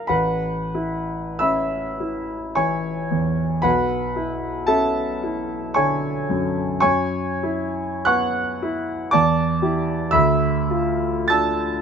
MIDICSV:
0, 0, Header, 1, 2, 480
1, 0, Start_track
1, 0, Key_signature, 3, "major"
1, 0, Tempo, 1304348
1, 38, Time_signature, 3, 2, 24, 8
1, 521, Tempo, 1151631
1, 1001, Tempo, 1067616
1, 2921, Tempo, 1229508
1, 3401, Tempo, 1061947
1, 3881, Tempo, 998336
1, 4361, Tempo, 1147228
1, 5068, End_track
2, 0, Start_track
2, 0, Title_t, "Grand piano"
2, 0, Program_c, 0, 0
2, 0, Control_c, 0, 64, 127
2, 0, Note_on_c, 0, 70, 41
2, 0, Note_on_c, 0, 77, 42
2, 0, Note_on_c, 0, 82, 51
2, 27, Note_on_c, 0, 83, 62
2, 33, Note_on_c, 0, 78, 47
2, 34, Note_on_c, 0, 71, 48
2, 35, Note_on_c, 0, 33, 35
2, 47, Note_off_c, 0, 82, 0
2, 47, Control_c, 0, 64, 0
2, 50, Note_off_c, 0, 70, 0
2, 50, Note_off_c, 0, 77, 0
2, 130, Control_c, 0, 64, 127
2, 274, Note_on_c, 0, 64, 31
2, 504, Note_off_c, 0, 71, 0
2, 504, Note_off_c, 0, 78, 0
2, 509, Note_off_c, 0, 83, 0
2, 511, Note_on_c, 0, 88, 66
2, 515, Note_on_c, 0, 83, 49
2, 516, Note_on_c, 0, 76, 49
2, 519, Note_on_c, 0, 61, 28
2, 670, Note_off_c, 0, 64, 0
2, 765, Note_on_c, 0, 64, 31
2, 908, Note_off_c, 0, 61, 0
2, 981, Note_off_c, 0, 83, 0
2, 982, Note_off_c, 0, 76, 0
2, 995, Note_on_c, 0, 85, 64
2, 996, Note_off_c, 0, 88, 0
2, 998, Note_on_c, 0, 80, 52
2, 999, Note_on_c, 0, 73, 49
2, 1001, Note_on_c, 0, 52, 31
2, 1147, Note_off_c, 0, 64, 0
2, 1244, Note_on_c, 0, 40, 31
2, 1390, Note_off_c, 0, 52, 0
2, 1466, Note_off_c, 0, 33, 0
2, 1466, Note_off_c, 0, 73, 0
2, 1466, Note_off_c, 0, 80, 0
2, 1473, Note_on_c, 0, 83, 70
2, 1479, Note_on_c, 0, 35, 38
2, 1479, Note_on_c, 0, 71, 52
2, 1479, Note_on_c, 0, 78, 53
2, 1482, Note_off_c, 0, 85, 0
2, 1485, Note_off_c, 0, 40, 0
2, 1495, Control_c, 0, 64, 0
2, 1574, Control_c, 0, 64, 127
2, 1717, Note_on_c, 0, 64, 34
2, 1939, Note_off_c, 0, 71, 0
2, 1939, Note_off_c, 0, 78, 0
2, 1944, Note_on_c, 0, 81, 69
2, 1949, Note_on_c, 0, 69, 52
2, 1949, Note_on_c, 0, 76, 46
2, 1951, Note_on_c, 0, 61, 32
2, 1954, Note_off_c, 0, 83, 0
2, 2102, Note_off_c, 0, 64, 0
2, 2199, Note_on_c, 0, 64, 34
2, 2339, Note_off_c, 0, 61, 0
2, 2416, Note_off_c, 0, 69, 0
2, 2416, Note_off_c, 0, 76, 0
2, 2429, Note_on_c, 0, 85, 66
2, 2431, Note_off_c, 0, 81, 0
2, 2435, Note_on_c, 0, 80, 50
2, 2436, Note_on_c, 0, 73, 51
2, 2439, Note_on_c, 0, 50, 32
2, 2581, Note_off_c, 0, 64, 0
2, 2658, Note_off_c, 0, 73, 0
2, 2658, Note_off_c, 0, 80, 0
2, 2671, Note_off_c, 0, 85, 0
2, 2677, Note_on_c, 0, 42, 38
2, 2820, Note_off_c, 0, 50, 0
2, 2899, Note_off_c, 0, 35, 0
2, 2906, Note_on_c, 0, 85, 72
2, 2910, Note_off_c, 0, 42, 0
2, 2910, Note_on_c, 0, 80, 59
2, 2913, Note_on_c, 0, 73, 59
2, 2917, Note_on_c, 0, 42, 41
2, 2926, Control_c, 0, 64, 0
2, 2995, Control_c, 0, 64, 127
2, 3153, Note_on_c, 0, 64, 38
2, 3380, Note_off_c, 0, 80, 0
2, 3381, Note_off_c, 0, 73, 0
2, 3393, Note_off_c, 0, 85, 0
2, 3394, Note_on_c, 0, 90, 80
2, 3399, Note_on_c, 0, 78, 58
2, 3399, Note_on_c, 0, 85, 58
2, 3401, Note_on_c, 0, 59, 39
2, 3551, Note_off_c, 0, 64, 0
2, 3653, Note_on_c, 0, 64, 40
2, 3789, Note_off_c, 0, 59, 0
2, 3860, Note_off_c, 0, 42, 0
2, 3861, Note_off_c, 0, 78, 0
2, 3861, Note_off_c, 0, 85, 0
2, 3873, Note_on_c, 0, 86, 80
2, 3876, Note_off_c, 0, 90, 0
2, 3880, Note_on_c, 0, 74, 61
2, 3881, Note_off_c, 0, 64, 0
2, 3882, Note_on_c, 0, 81, 62
2, 3885, Note_on_c, 0, 40, 48
2, 3888, Control_c, 0, 64, 0
2, 3984, Control_c, 0, 64, 127
2, 4118, Note_on_c, 0, 64, 39
2, 4118, Note_on_c, 0, 67, 40
2, 4341, Note_off_c, 0, 67, 0
2, 4341, Note_off_c, 0, 74, 0
2, 4342, Note_off_c, 0, 64, 0
2, 4342, Note_off_c, 0, 81, 0
2, 4348, Note_off_c, 0, 40, 0
2, 4352, Note_on_c, 0, 88, 85
2, 4357, Note_off_c, 0, 86, 0
2, 4358, Note_on_c, 0, 76, 63
2, 4358, Note_on_c, 0, 83, 60
2, 4362, Note_on_c, 0, 38, 48
2, 4367, Control_c, 0, 64, 0
2, 4446, Control_c, 0, 64, 127
2, 4602, Note_on_c, 0, 65, 42
2, 4832, Note_off_c, 0, 76, 0
2, 4832, Note_off_c, 0, 83, 0
2, 4842, Note_on_c, 0, 93, 79
2, 4844, Note_off_c, 0, 88, 0
2, 4850, Note_on_c, 0, 81, 65
2, 4851, Note_on_c, 0, 88, 63
2, 4853, Note_on_c, 0, 62, 35
2, 4991, Note_off_c, 0, 65, 0
2, 5068, Note_off_c, 0, 38, 0
2, 5068, Note_off_c, 0, 62, 0
2, 5068, Note_off_c, 0, 81, 0
2, 5068, Note_off_c, 0, 88, 0
2, 5068, Note_off_c, 0, 93, 0
2, 5068, End_track
0, 0, End_of_file